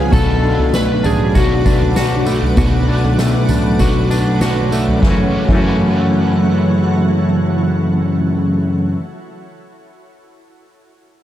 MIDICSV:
0, 0, Header, 1, 7, 480
1, 0, Start_track
1, 0, Key_signature, 3, "minor"
1, 0, Tempo, 612245
1, 100, Time_signature, 4, 2, 24, 8
1, 8804, End_track
2, 0, Start_track
2, 0, Title_t, "Ambient pad"
2, 0, Program_c, 0, 92
2, 0, Note_on_c, 0, 83, 88
2, 79, Note_off_c, 0, 83, 0
2, 99, Note_on_c, 0, 86, 88
2, 103, Note_on_c, 0, 78, 78
2, 104, Note_on_c, 0, 71, 74
2, 3908, Note_off_c, 0, 86, 0
2, 3910, Note_off_c, 0, 78, 0
2, 3911, Note_off_c, 0, 71, 0
2, 3944, Note_on_c, 0, 64, 78
2, 3946, Note_on_c, 0, 73, 73
2, 3947, Note_on_c, 0, 69, 68
2, 3947, Note_on_c, 0, 78, 85
2, 3948, Note_on_c, 0, 66, 73
2, 6458, Note_off_c, 0, 64, 0
2, 6459, Note_off_c, 0, 73, 0
2, 6459, Note_off_c, 0, 78, 0
2, 6460, Note_off_c, 0, 66, 0
2, 6460, Note_off_c, 0, 69, 0
2, 8804, End_track
3, 0, Start_track
3, 0, Title_t, "Electric slide guitar"
3, 0, Program_c, 1, 29
3, 0, Note_on_c, 1, 68, 86
3, 101, Note_off_c, 1, 68, 0
3, 105, Note_on_c, 1, 69, 92
3, 582, Note_off_c, 1, 69, 0
3, 585, Note_on_c, 1, 71, 97
3, 829, Note_on_c, 1, 68, 88
3, 830, Note_off_c, 1, 71, 0
3, 1071, Note_off_c, 1, 68, 0
3, 1078, Note_on_c, 1, 66, 82
3, 3438, Note_off_c, 1, 66, 0
3, 8804, End_track
4, 0, Start_track
4, 0, Title_t, "Clean electric guitar"
4, 0, Program_c, 2, 27
4, 0, Note_on_c, 2, 49, 90
4, 0, Note_on_c, 2, 59, 67
4, 0, Note_on_c, 2, 61, 66
4, 0, Note_on_c, 2, 68, 66
4, 87, Note_off_c, 2, 49, 0
4, 90, Note_on_c, 2, 47, 89
4, 93, Note_off_c, 2, 68, 0
4, 96, Note_on_c, 2, 66, 74
4, 146, Note_off_c, 2, 61, 0
4, 333, Note_on_c, 2, 62, 65
4, 573, Note_off_c, 2, 59, 0
4, 576, Note_on_c, 2, 57, 66
4, 803, Note_off_c, 2, 62, 0
4, 812, Note_on_c, 2, 62, 63
4, 1055, Note_off_c, 2, 66, 0
4, 1058, Note_on_c, 2, 66, 68
4, 1288, Note_off_c, 2, 62, 0
4, 1297, Note_on_c, 2, 62, 66
4, 1537, Note_off_c, 2, 66, 0
4, 1540, Note_on_c, 2, 66, 75
4, 1772, Note_off_c, 2, 57, 0
4, 1775, Note_on_c, 2, 57, 59
4, 2008, Note_off_c, 2, 47, 0
4, 2017, Note_on_c, 2, 47, 84
4, 2021, Note_off_c, 2, 66, 0
4, 2024, Note_on_c, 2, 66, 70
4, 2249, Note_off_c, 2, 62, 0
4, 2259, Note_on_c, 2, 62, 61
4, 2498, Note_off_c, 2, 57, 0
4, 2502, Note_on_c, 2, 57, 66
4, 2733, Note_off_c, 2, 62, 0
4, 2742, Note_on_c, 2, 62, 58
4, 2976, Note_off_c, 2, 66, 0
4, 2979, Note_on_c, 2, 66, 68
4, 3210, Note_off_c, 2, 62, 0
4, 3219, Note_on_c, 2, 62, 72
4, 3457, Note_off_c, 2, 66, 0
4, 3460, Note_on_c, 2, 66, 66
4, 3698, Note_off_c, 2, 57, 0
4, 3701, Note_on_c, 2, 57, 58
4, 3912, Note_on_c, 2, 42, 86
4, 3933, Note_off_c, 2, 47, 0
4, 3936, Note_on_c, 2, 49, 88
4, 3955, Note_on_c, 2, 52, 82
4, 3969, Note_off_c, 2, 57, 0
4, 3972, Note_on_c, 2, 57, 89
4, 3985, Note_off_c, 2, 62, 0
4, 3988, Note_on_c, 2, 61, 83
4, 4001, Note_off_c, 2, 66, 0
4, 4004, Note_on_c, 2, 66, 93
4, 4270, Note_off_c, 2, 42, 0
4, 4273, Note_on_c, 2, 42, 84
4, 4294, Note_off_c, 2, 49, 0
4, 4297, Note_off_c, 2, 52, 0
4, 4297, Note_on_c, 2, 49, 93
4, 4316, Note_on_c, 2, 52, 90
4, 4328, Note_off_c, 2, 57, 0
4, 4331, Note_on_c, 2, 57, 103
4, 4339, Note_off_c, 2, 66, 0
4, 4346, Note_off_c, 2, 61, 0
4, 4349, Note_on_c, 2, 61, 106
4, 4364, Note_on_c, 2, 66, 98
4, 7023, Note_off_c, 2, 42, 0
4, 7041, Note_off_c, 2, 49, 0
4, 7060, Note_off_c, 2, 52, 0
4, 7075, Note_off_c, 2, 57, 0
4, 7093, Note_off_c, 2, 61, 0
4, 7108, Note_off_c, 2, 66, 0
4, 8804, End_track
5, 0, Start_track
5, 0, Title_t, "Overdriven electric guitar"
5, 0, Program_c, 3, 29
5, 0, Note_on_c, 3, 53, 68
5, 0, Note_on_c, 3, 59, 67
5, 0, Note_on_c, 3, 61, 71
5, 0, Note_on_c, 3, 68, 68
5, 87, Note_on_c, 3, 47, 84
5, 97, Note_off_c, 3, 53, 0
5, 108, Note_on_c, 3, 54, 90
5, 111, Note_off_c, 3, 61, 0
5, 117, Note_off_c, 3, 68, 0
5, 119, Note_off_c, 3, 59, 0
5, 122, Note_on_c, 3, 57, 98
5, 134, Note_on_c, 3, 62, 89
5, 150, Note_on_c, 3, 66, 83
5, 1053, Note_off_c, 3, 47, 0
5, 1054, Note_off_c, 3, 54, 0
5, 1057, Note_on_c, 3, 54, 63
5, 1068, Note_off_c, 3, 57, 0
5, 1071, Note_on_c, 3, 57, 67
5, 1077, Note_off_c, 3, 62, 0
5, 1087, Note_on_c, 3, 62, 77
5, 1094, Note_off_c, 3, 66, 0
5, 1097, Note_on_c, 3, 66, 70
5, 1534, Note_off_c, 3, 54, 0
5, 1537, Note_on_c, 3, 54, 76
5, 1553, Note_off_c, 3, 57, 0
5, 1553, Note_off_c, 3, 62, 0
5, 1556, Note_on_c, 3, 57, 63
5, 1567, Note_on_c, 3, 62, 78
5, 1574, Note_off_c, 3, 66, 0
5, 1577, Note_on_c, 3, 66, 71
5, 2008, Note_on_c, 3, 47, 89
5, 2024, Note_off_c, 3, 54, 0
5, 2027, Note_on_c, 3, 54, 92
5, 2032, Note_off_c, 3, 57, 0
5, 2034, Note_off_c, 3, 62, 0
5, 2040, Note_on_c, 3, 57, 94
5, 2056, Note_on_c, 3, 62, 104
5, 2066, Note_off_c, 3, 66, 0
5, 2069, Note_on_c, 3, 66, 102
5, 2972, Note_off_c, 3, 54, 0
5, 2974, Note_off_c, 3, 47, 0
5, 2976, Note_on_c, 3, 54, 73
5, 2989, Note_off_c, 3, 57, 0
5, 2992, Note_on_c, 3, 57, 80
5, 2995, Note_off_c, 3, 62, 0
5, 3005, Note_on_c, 3, 62, 69
5, 3013, Note_off_c, 3, 66, 0
5, 3016, Note_on_c, 3, 66, 85
5, 3453, Note_off_c, 3, 54, 0
5, 3456, Note_on_c, 3, 54, 65
5, 3470, Note_off_c, 3, 57, 0
5, 3472, Note_off_c, 3, 62, 0
5, 3473, Note_on_c, 3, 57, 70
5, 3485, Note_on_c, 3, 62, 84
5, 3492, Note_off_c, 3, 66, 0
5, 3496, Note_on_c, 3, 66, 79
5, 3926, Note_on_c, 3, 42, 82
5, 3943, Note_on_c, 3, 49, 91
5, 3953, Note_off_c, 3, 62, 0
5, 3956, Note_off_c, 3, 54, 0
5, 3959, Note_on_c, 3, 52, 89
5, 3968, Note_off_c, 3, 57, 0
5, 3972, Note_on_c, 3, 57, 83
5, 3982, Note_off_c, 3, 66, 0
5, 3984, Note_on_c, 3, 61, 91
5, 3997, Note_on_c, 3, 66, 105
5, 4283, Note_off_c, 3, 42, 0
5, 4286, Note_on_c, 3, 42, 91
5, 4302, Note_off_c, 3, 49, 0
5, 4306, Note_on_c, 3, 49, 88
5, 4310, Note_off_c, 3, 52, 0
5, 4318, Note_on_c, 3, 52, 87
5, 4328, Note_off_c, 3, 57, 0
5, 4331, Note_on_c, 3, 57, 94
5, 4341, Note_off_c, 3, 61, 0
5, 4342, Note_off_c, 3, 66, 0
5, 4344, Note_on_c, 3, 61, 98
5, 4355, Note_on_c, 3, 66, 101
5, 7030, Note_off_c, 3, 42, 0
5, 7050, Note_off_c, 3, 49, 0
5, 7062, Note_off_c, 3, 52, 0
5, 7075, Note_off_c, 3, 57, 0
5, 7088, Note_off_c, 3, 61, 0
5, 7099, Note_off_c, 3, 66, 0
5, 8804, End_track
6, 0, Start_track
6, 0, Title_t, "Tine electric piano"
6, 0, Program_c, 4, 4
6, 99, Note_on_c, 4, 35, 110
6, 442, Note_off_c, 4, 35, 0
6, 458, Note_on_c, 4, 35, 106
6, 801, Note_off_c, 4, 35, 0
6, 821, Note_on_c, 4, 33, 100
6, 1049, Note_off_c, 4, 33, 0
6, 1061, Note_on_c, 4, 35, 115
6, 1989, Note_off_c, 4, 35, 0
6, 2019, Note_on_c, 4, 35, 106
6, 2361, Note_off_c, 4, 35, 0
6, 2380, Note_on_c, 4, 35, 99
6, 2722, Note_off_c, 4, 35, 0
6, 2735, Note_on_c, 4, 33, 91
6, 2966, Note_off_c, 4, 33, 0
6, 2981, Note_on_c, 4, 35, 111
6, 3909, Note_off_c, 4, 35, 0
6, 3945, Note_on_c, 4, 42, 106
6, 4076, Note_off_c, 4, 42, 0
6, 4303, Note_on_c, 4, 42, 103
6, 7006, Note_off_c, 4, 42, 0
6, 8804, End_track
7, 0, Start_track
7, 0, Title_t, "Drums"
7, 99, Note_on_c, 9, 36, 127
7, 99, Note_on_c, 9, 43, 127
7, 99, Note_on_c, 9, 54, 79
7, 178, Note_off_c, 9, 36, 0
7, 178, Note_off_c, 9, 43, 0
7, 178, Note_off_c, 9, 54, 0
7, 460, Note_on_c, 9, 43, 71
7, 538, Note_off_c, 9, 43, 0
7, 575, Note_on_c, 9, 38, 101
7, 578, Note_on_c, 9, 54, 104
7, 654, Note_off_c, 9, 38, 0
7, 656, Note_off_c, 9, 54, 0
7, 818, Note_on_c, 9, 43, 73
7, 818, Note_on_c, 9, 54, 70
7, 896, Note_off_c, 9, 43, 0
7, 896, Note_off_c, 9, 54, 0
7, 1060, Note_on_c, 9, 43, 71
7, 1060, Note_on_c, 9, 54, 73
7, 1061, Note_on_c, 9, 36, 89
7, 1139, Note_off_c, 9, 43, 0
7, 1139, Note_off_c, 9, 54, 0
7, 1140, Note_off_c, 9, 36, 0
7, 1300, Note_on_c, 9, 36, 92
7, 1300, Note_on_c, 9, 54, 72
7, 1378, Note_off_c, 9, 36, 0
7, 1378, Note_off_c, 9, 54, 0
7, 1420, Note_on_c, 9, 43, 64
7, 1498, Note_off_c, 9, 43, 0
7, 1538, Note_on_c, 9, 38, 111
7, 1538, Note_on_c, 9, 54, 93
7, 1616, Note_off_c, 9, 38, 0
7, 1616, Note_off_c, 9, 54, 0
7, 1775, Note_on_c, 9, 54, 74
7, 1854, Note_off_c, 9, 54, 0
7, 1897, Note_on_c, 9, 43, 61
7, 1976, Note_off_c, 9, 43, 0
7, 2015, Note_on_c, 9, 43, 125
7, 2015, Note_on_c, 9, 54, 81
7, 2018, Note_on_c, 9, 36, 127
7, 2093, Note_off_c, 9, 43, 0
7, 2093, Note_off_c, 9, 54, 0
7, 2097, Note_off_c, 9, 36, 0
7, 2382, Note_on_c, 9, 43, 69
7, 2460, Note_off_c, 9, 43, 0
7, 2497, Note_on_c, 9, 38, 102
7, 2499, Note_on_c, 9, 54, 91
7, 2575, Note_off_c, 9, 38, 0
7, 2577, Note_off_c, 9, 54, 0
7, 2734, Note_on_c, 9, 43, 75
7, 2734, Note_on_c, 9, 54, 70
7, 2812, Note_off_c, 9, 43, 0
7, 2812, Note_off_c, 9, 54, 0
7, 2974, Note_on_c, 9, 43, 73
7, 2974, Note_on_c, 9, 54, 71
7, 2979, Note_on_c, 9, 36, 90
7, 3052, Note_off_c, 9, 43, 0
7, 3052, Note_off_c, 9, 54, 0
7, 3058, Note_off_c, 9, 36, 0
7, 3222, Note_on_c, 9, 54, 67
7, 3301, Note_off_c, 9, 54, 0
7, 3458, Note_on_c, 9, 38, 120
7, 3458, Note_on_c, 9, 54, 89
7, 3536, Note_off_c, 9, 38, 0
7, 3537, Note_off_c, 9, 54, 0
7, 3703, Note_on_c, 9, 54, 69
7, 3782, Note_off_c, 9, 54, 0
7, 3825, Note_on_c, 9, 43, 62
7, 3904, Note_off_c, 9, 43, 0
7, 3942, Note_on_c, 9, 36, 112
7, 3944, Note_on_c, 9, 38, 94
7, 4020, Note_off_c, 9, 36, 0
7, 4023, Note_off_c, 9, 38, 0
7, 4302, Note_on_c, 9, 36, 102
7, 4302, Note_on_c, 9, 49, 91
7, 4380, Note_off_c, 9, 36, 0
7, 4381, Note_off_c, 9, 49, 0
7, 8804, End_track
0, 0, End_of_file